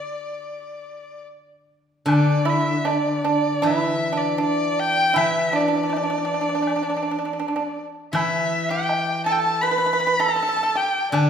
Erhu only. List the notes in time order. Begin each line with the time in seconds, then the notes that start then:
Already playing: D5
2.09 D5
2.50 E5
2.87 D5
3.29 D5
3.67 E5
4.17 D5
4.43 D5
4.80 G5
5.18 E5
5.56 D5
8.14 E5
8.69 G5
9.26 A5
9.32 G5
9.39 A5
9.61 B5
10.20 A5
10.77 G5
11.13 D5